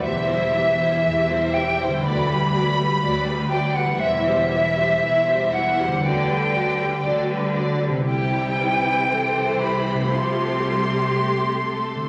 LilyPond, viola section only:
\new Staff \with { instrumentName = "Viola section" } { \clef bass \time 4/4 \key c \lydian \tempo 4 = 60 << { g'16 e'16 g'16 e'16 g'16 e'16 g'16 e'16 fis'16 g'16 fis'16 g'16 fis'16 g'16 fis'16 g'16 | e'16 g'16 e'16 g'16 e'16 g'16 e'16 g'16 fis'16 g'16 fis'16 g'16 fis'16 g'16 fis'16 g'16 | e'4 a'8 g'2~ g'8 | } \\ { e16 g16 e16 g16 e16 g16 e16 g16 fis16 g16 fis16 g16 fis16 g16 fis16 g16 | e16 g16 e16 g16 e16 g16 e16 g16 fis16 g16 fis16 g16 fis16 g16 fis16 g16 | g4 e4 f8 g8 a4 | } >> }